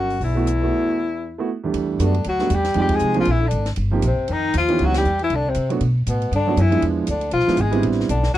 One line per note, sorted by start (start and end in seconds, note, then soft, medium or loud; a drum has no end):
0.00 0.17 G1 medium
0.00 0.20 F#2 medium
0.00 0.23 F#4 medium
0.10 open hi-hat soft
0.20 0.69 B1 medium
0.20 1.44 E2 medium
0.20 1.46 E4 medium
0.20 open hi-hat soft
0.35 0.45 A3 medium
0.35 0.45 B3 medium
0.35 0.45 E4 soft
0.35 0.46 F#4 medium
0.47 cross-stick soft
0.47 closed hi-hat soft
0.61 0.95 A3 medium
0.61 0.96 B3 medium
0.61 0.96 E4 soft
0.61 0.96 F#4 medium
1.38 1.48 A3 medium
1.38 1.48 B3 medium
1.38 1.48 E4 medium
1.38 1.48 F#4 medium
1.64 1.97 E2 medium
1.64 1.97 G3 soft
1.64 1.97 A3 soft
1.64 1.98 D4 medium
1.64 1.98 G4 medium
1.74 1.98 E2 medium
1.74 ride medium
1.99 2.24 F#2 medium
1.99 2.23 D3 medium
1.99 2.12 G3 medium
1.99 2.12 A3 soft
1.99 2.13 B3 soft
1.99 2.13 D4 soft
1.99 2.13 F#4 medium
1.99 hi-hat pedal medium
1.99 ride medium
2.05 2.26 D4 medium
2.14 ride soft
2.24 2.49 D2 medium
2.24 2.53 F#3 medium
2.24 ride medium
2.29 2.57 F#4 medium
2.39 2.49 G3 medium
2.39 2.49 A3 soft
2.39 2.49 B3 medium
2.39 2.49 D4 medium
2.39 2.49 F#4 medium
2.39 snare soft
2.50 2.74 E2 medium
2.50 2.76 G3 medium
2.50 hi-hat pedal soft
2.50 ride medium
2.56 2.78 G4 medium
2.64 snare soft
2.64 ride soft
2.74 3.00 F2 medium
2.74 3.12 F3 medium
2.74 2.93 G3 medium
2.74 3.12 G#3 medium
2.74 3.13 C4 medium
2.74 3.13 D#4 medium
2.74 3.13 G4 medium
2.74 ride medium
2.82 2.97 G4 loud
2.89 3.16 G#3 medium
2.89 kick medium
2.89 ride medium
2.95 3.18 G#4 medium
2.95 hi-hat pedal medium
3.01 3.25 C2 medium
3.14 3.25 F3 medium
3.14 3.25 A#3 medium
3.14 3.25 C4 medium
3.14 3.26 D4 medium
3.14 3.26 G#4 medium
3.14 ride soft
3.19 3.30 F3 medium
3.19 3.33 F4 medium
3.25 3.51 A#1 medium
3.25 3.42 E3 medium
3.25 ride medium
3.31 3.49 E4 medium
3.41 3.66 D3 medium
3.47 3.69 D4 medium
3.47 hi-hat pedal soft
3.47 ride medium
3.52 3.76 G#1 medium
3.66 snare soft
3.66 ride soft
3.76 4.02 G1 medium
3.76 ride medium
3.91 4.01 F3 medium
3.91 4.01 A#3 medium
3.91 4.02 C4 medium
3.91 4.02 D#4 medium
3.91 4.02 G4 medium
4.02 4.16 A#1 medium
4.02 4.30 C3 medium
4.02 hi-hat pedal soft
4.02 ride medium
4.07 4.33 C4 medium
4.18 muted upright bass stroke soft
4.28 4.53 F2 medium
4.28 4.54 D#3 medium
4.28 ride medium
4.32 4.55 D#4 medium
4.54 4.78 D#2 medium
4.54 4.83 F3 medium
4.54 4.87 F4 medium
4.54 hi-hat pedal medium
4.54 ride medium
4.68 5.02 E3 medium
4.68 5.02 B3 medium
4.68 5.03 C#4 medium
4.68 5.03 D#4 medium
4.68 5.03 G4 medium
4.68 ride soft
4.79 5.04 C#2 medium
4.79 4.95 F#3 medium
4.79 ride soft
4.85 4.97 F#4 medium
4.94 5.19 G3 medium
4.94 5.19 G4 medium
4.94 snare medium
4.94 ride medium
5.05 5.29 E2 medium
5.05 hi-hat pedal medium
5.19 5.35 E3 medium
5.19 ride soft
5.24 5.37 E4 medium
5.30 5.55 C2 medium
5.30 5.50 D3 medium
5.30 ride medium
5.35 5.51 D4 medium
5.49 5.72 C3 medium
5.49 5.72 C4 medium
5.54 5.80 C3 medium
5.54 hi-hat pedal medium
5.54 ride medium
5.69 5.79 F#3 medium
5.69 5.80 A3 soft
5.69 5.80 B3 medium
5.69 5.80 D4 medium
5.69 5.80 F#4 medium
5.69 ride soft
5.80 6.05 B2 medium
5.80 ride medium
6.06 6.31 A2 medium
6.06 6.31 B2 medium
6.06 6.32 B3 medium
6.06 hi-hat pedal medium
6.06 ride medium
6.22 ride soft
6.31 6.56 G2 medium
6.31 6.60 D3 medium
6.31 6.62 D4 medium
6.31 ride medium
6.47 6.56 F#3 medium
6.47 6.56 A3 medium
6.47 6.57 B3 medium
6.47 6.57 D4 medium
6.47 6.57 F#4 medium
6.56 6.81 F#2 medium
6.56 6.83 E3 medium
6.56 hi-hat pedal soft
6.56 ride medium
6.61 6.84 E4 medium
6.70 7.05 F3 medium
6.70 7.05 G#3 medium
6.70 7.06 B3 medium
6.70 7.06 D4 medium
6.70 7.06 E4 medium
6.70 ride soft
6.82 7.07 E2 medium
6.82 ride medium
7.07 7.32 D2 medium
7.07 7.31 D3 medium
7.07 7.33 D4 medium
7.07 hi-hat pedal medium
7.07 ride medium
7.21 ride soft
7.31 7.47 B1 medium
7.31 7.60 F3 medium
7.31 7.63 F4 medium
7.31 ride medium
7.39 snare soft
7.47 7.57 F3 medium
7.47 7.57 G#3 medium
7.47 7.58 B3 medium
7.47 7.58 D4 medium
7.47 7.58 E4 medium
7.47 muted upright bass stroke soft
7.47 snare soft
7.57 7.83 G#1 medium
7.57 7.84 G#3 medium
7.57 hi-hat pedal medium
7.57 ride medium
7.61 7.85 G#4 medium
7.71 8.06 G3 medium
7.71 8.06 B3 medium
7.71 8.07 C4 medium
7.71 8.07 D4 medium
7.71 8.07 E4 medium
7.71 ride soft
7.83 8.08 A1 medium
7.83 ride medium
7.92 snare soft
8.00 snare soft
8.08 8.33 B1 medium
8.08 8.33 D3 medium
8.08 8.33 D4 medium
8.08 hi-hat pedal medium
8.08 ride medium
8.23 snare medium
8.34 8.38 C2 medium
8.34 8.38 F#3 medium
8.34 8.38 F#4 loud